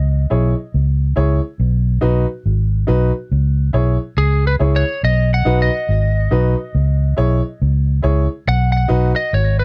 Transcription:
Already playing: C#2 D#5
0.30 B1 E4 G#4 C#5
0.74 C#2
1.16 C#2 E4 G#4 C#5
1.60 B1
2.01 B1 D#4 F#4 B4
2.46 G#1
2.87 B1 D#4 F#4 B4
3.31 C#2
3.73 B1 E4 G#4 C#5
4.17 C#2 G#4
4.47 B4
4.59 C#2 E4 G#4 C#5
4.76 C#5
5.03 B1 D#5
5.34 F#5
5.45 B1 D#4 F#4 B4
5.62 D#5
5.89 G#1
6.31 B1 D#4 F#4 B4
6.75 C#2
7.17 B1 E4 G#4 C#5
7.62 C#2
8.02 C#2 E4 G#4 C#5
8.47 B1 F#5
8.72 F#5
8.88 B1 D#4 F#4 B4
9.16 D#5
9.33 G#1 C#5
9.59 B4

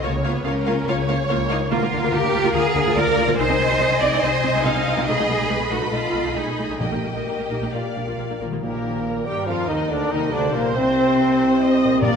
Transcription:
0.03 C#2 C#3 A#3 F4 C#5 F5
0.24 A#3 B3 C#4 F4 C#5 F5
0.45 C#2 A#3 C#4 F4 A#4 C#5 F5
0.66 A#3 C#4 F4 C#5 F5
0.87 C#2 C#3 A#3 F4 C#5 F5
1.07 A#3 F4 C#5 F5
1.28 C#2 A#3 F4 A#4 C#5 F5
1.49 A#3 C#4 D#4 F4 C#5 F5
1.70 D2 D3 A#3 F4 A#4 F5
1.81 D2 A#3 F4
1.92 D2 A#3 D4
2.02 D2 A#3 F4
2.12 D2 A#3 F4 G4 A#4
2.22 D2 A#3 D4
2.32 D2 A#3 F4
2.43 D2 A#3 F4
2.53 D2 D3 A#3 F4 G#4
2.75 D2 A#3 D4
2.85 D2 A#3 F4
2.96 D2 A#3 F4 A#4 D5
3.06 D2 A#3 D4
3.17 D2 A#3 F4
3.26 D2 A#3 F4
3.37 C2 C3 C4 D#4 C5 D#5 G#5
3.48 C2 C4 D#4
3.58 C2 C4
3.69 C2 C4 D#4
3.79 C2 C4 D#4 G#4
3.90 C2 C4
4.01 C2 C4 D#4 D5
4.11 C2 C4 D#4
4.21 C2 C3 C4 D#4 C5
4.43 C2 G#3 C4
4.53 C2 C4 D#4
4.64 C2 C4 D#4 G#4 F5
4.75 C2 C4
4.85 C2 C4 D#4
4.97 C2 C4 D#4
5.07 B1 B2 A3 D#4 G#4 D#5 B5
5.18 B1 A3 D#4
5.28 B1 A3 B3
5.39 B1 A3 D#4
5.49 B1 A3 D#4 A4 B4
5.60 B1 A3 B3
5.70 B1 A3 D#4 F#4
5.81 B1 A3 D#4
5.91 B1 B2 A3 D#4 F4 A4
6.13 B1 A3 B3
6.24 B1 A3 D#4
6.35 B1 A3 D#4 G#4 A4
6.45 B1 A3 B3
6.57 B1 A3 D#4
6.68 B1 A3 D#4
6.79 A#1 A#2 A#3 D#4 G4 D#5 G5
6.91 A#1 A#3 D#4
7.02 A#1 A#3
7.14 A#1 A#3 D#4
7.26 A#1 A#3 D#4 G4
7.37 A#1 A#3
7.49 A#1 A#3 D#4
7.60 A#1 A#3 D#4
7.71 A#1 A#2 A#3 F4 D5 F5
7.95 A#1 A#3 D4
8.06 A#1 A#3 F4
8.17 A#1 A#3 F4
8.28 A#1 A#3 D4
8.40 A#1 A#3 F4
8.44 D#3
8.49 A#1 G3 A#3 F4
8.54 D#4
8.58 A#1 A#2 G4 A#4
8.62 A#2 D#3 A#3 G4 A#4
9.05 A#4
9.26 G2 G3 G4 G5
9.46 F2 F3 F4 F5
9.68 D#2 D#3 D#4 D#5
9.89 D2 D3 D4 A#4 D5
10.10 D#2 D#3 D#4 D#5
10.14 C3
10.19 G3
10.23 D#4
10.28 D2 G4
10.32 D3 D4 C5 D5
10.53 A#1 A#2 A#3 A#4
10.74 C2 C3 C4 C5
11.60 D#5
11.84 A#2
11.88 A#3
11.93 D4
11.97 G4
12.02 A#1 A#2 G3 A#3 A#4 D5 G5

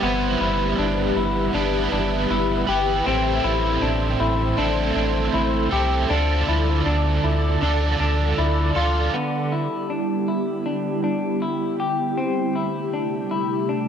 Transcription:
Already playing: E5
0.00 G1 G3 B3 G4 B4 B5
0.05 E4 B4
0.41 G1 E4
0.79 G1 D4
1.16 G1 E4
1.53 G1 G3 B3 D4 E4
1.58 B4
1.92 G1 D4
2.30 G1 E4
2.67 G1 E4 G4 B4
2.71 B3
3.04 A1 A2 A3 C4 A4 C5 C6
3.10 E4 A4
3.44 A1 E4
3.82 A1 D4
4.20 A1 E4
4.57 A1 A3 C4 D4 E4
4.62 A4
4.96 A1 D4
5.34 A1 E4
5.71 C2 E4 G4 A4
5.75 C4
6.08 D2 D3 D4 D5 A5 D6
6.13 F4 A4
6.48 D2 E4
6.86 D2 D4
7.24 D2 E4
7.61 D2 D3 D4 F4
7.66 A4
8.00 D2 D4
8.38 D2 E4
8.75 D2 F4 A4
8.79 D4
9.14 D3 G3 B3 E4 G4
9.52 E4
9.90 D4
10.28 E4
10.66 D4
11.04 D4
11.42 E4
11.80 G4
12.17 C3 G3 A3 C4
12.55 E4
12.93 D4
13.31 E4
13.69 D4

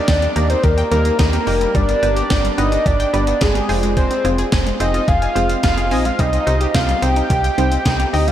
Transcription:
Already playing: D5
0.08 D#2 G5, kick, snare, closed hi-hat
0.22 G3, closed hi-hat
0.36 D#2 A#3 D#4 G4 A#4, closed hi-hat
0.50 D#4 C5, closed hi-hat
0.64 D#2 G4 A#4, kick, closed hi-hat
0.78 G5, closed hi-hat
0.91 D#2 G3 A#3 D#4 G4 A#4, closed hi-hat
1.05 A#3, closed hi-hat
1.19 D#2 D#4 A#4, kick, snare, closed hi-hat
1.33 G4, closed hi-hat
1.47 F1 A#3 D#4 G4 A#4 G5, open hi-hat
1.61 G3, closed hi-hat
1.75 G1 G3 D5, kick, closed hi-hat
1.89 B3, closed hi-hat
2.02 G1 B3 D4 G4 B4, closed hi-hat
2.16 G4, closed hi-hat
2.30 G1 G5, kick, snare, closed hi-hat
2.44 G3, closed hi-hat
2.58 G1 B3 D4 G4 B4 D#5, closed hi-hat
2.72 D4, closed hi-hat
2.86 G1 G4 D5, kick, closed hi-hat
3.00 G5, closed hi-hat
3.13 G1 G3 B3 D4 G4 B4, closed hi-hat
3.27 B3, closed hi-hat
3.41 G1 D4 G#4, kick, snare, closed hi-hat
3.55 G4, closed hi-hat
3.69 F1 C4 F4 G#4 C5 G#5, open hi-hat
3.83 G#3, closed hi-hat
3.97 G#3 C5, kick, closed hi-hat
4.11 C4, closed hi-hat
4.25 F1 C4 F4 G#4 C5, closed hi-hat
4.38 G#4, closed hi-hat
4.52 F1 G#5, kick, snare, closed hi-hat
4.66 G#3, closed hi-hat
4.80 F1 C4 F4 G#4 C5 D#5, closed hi-hat
4.94 F4, closed hi-hat
5.08 F1 G#4 F5, kick, closed hi-hat
5.22 G#5, closed hi-hat
5.35 F1 G#3 C4 F4 G#4 C5, closed hi-hat
5.49 C4, closed hi-hat
5.63 F1 F4 F5, kick, snare, closed hi-hat
5.77 G#4, closed hi-hat
5.91 A#1 C4 F4 G#4 C5 D#5 G#5, open hi-hat
6.05 G#3 F5, closed hi-hat
6.19 C2 G3 D#5, kick, closed hi-hat
6.33 C4, closed hi-hat
6.47 C2 C4 D#4 G4 C5, closed hi-hat
6.61 G4, closed hi-hat
6.75 C2 F5 G5, kick, snare, closed hi-hat
6.89 G3, closed hi-hat
7.02 C2 C4 D#4 G4 C5 G5, closed hi-hat
7.16 D#4, closed hi-hat
7.30 C2 G4, kick, closed hi-hat
7.44 G5, closed hi-hat
7.58 C2 G3 C4 D#4 G4 C5, closed hi-hat
7.72 C4, closed hi-hat
7.85 C2 D#4, kick, snare, closed hi-hat
8.00 G4, closed hi-hat
8.13 D2 C4 D#4 G4 D#5 G5, open hi-hat
8.27 G3 F5, closed hi-hat

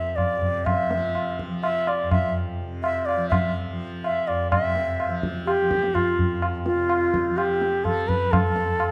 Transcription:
Already playing: F2 C3 F3 E5
0.16 D5, tabla na, tabla ge
0.37 C3
0.42 tabla ge
0.65 E5, tabla na, tabla ge
0.91 F3, tabla te
1.15 tabla na
1.39 tabla ke
1.48 F3
1.63 E5, tabla na
1.87 D5, tabla na
2.03 F2
2.11 E5, tabla na, tabla ge
2.61 C3
2.83 E5, tabla na
3.06 D5, tabla na
3.16 F3
3.29 E5, tabla na, tabla ge
3.72 F3
4.04 E5, tabla na
4.28 F2 D5, tabla na
4.51 C3 E5, tabla na, tabla ge
4.75 tabla te
5.00 tabla na
5.08 F3
5.23 tabla ke
5.46 G4, tabla na
5.62 F3
5.71 tabla ke
5.83 tabla te
5.95 F4, tabla na, tabla ge
6.18 F2, tabla ge
6.42 tabla na
6.65 F4, tabla te
6.75 C3
6.90 tabla na
7.14 tabla ke
7.29 F3
7.37 G4, tabla na
7.62 tabla te
7.84 F3 A4, tabla na, tabla ge
8.08 B4, tabla ge
8.32 A4, tabla na, tabla ge
8.40 F2
8.56 tabla te
8.80 tabla na

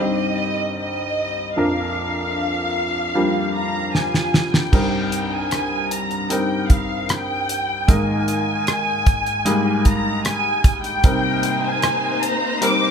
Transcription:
Already playing: C2 G2 A#4
0.00 G3 C4 D#4 G4 D#5
0.78 D#5
1.56 A#1 F2 F3 A#3 D4 A#4 F5
3.14 F3 G3 A#3 D4
3.54 A#5
3.94 G#5, snare
4.14 snare
4.34 snare
4.53 G5, snare
4.72 C2 G2 G3 C4 D#4 A#4, kick, crash
5.12 closed hi-hat
5.33 G#5
5.51 cross-stick, closed hi-hat
5.91 A#5, closed hi-hat
6.11 closed hi-hat
6.30 G3 C4 D#4 A#4 G5, closed hi-hat
6.70 F5, kick, closed hi-hat
7.09 G5, cross-stick, closed hi-hat
7.49 closed hi-hat
7.88 G#2 D#3 G#3 A#3 D#4 A#4 G#5, kick, closed hi-hat
8.28 closed hi-hat
8.67 cross-stick, closed hi-hat
9.06 kick, closed hi-hat
9.26 closed hi-hat
9.45 G3 G#3 A#3 D#4, closed hi-hat
9.85 A#5, kick, closed hi-hat
10.25 G#5, cross-stick, closed hi-hat
10.64 kick, closed hi-hat
10.84 G5, closed hi-hat
11.04 C3 G3 A#3 C4 D#4 A#4 C5, kick, closed hi-hat
11.43 closed hi-hat
11.65 G#5
11.82 cross-stick, closed hi-hat
12.23 A#5, closed hi-hat
12.61 G3 C4 D#4 A#4 D6, closed hi-hat

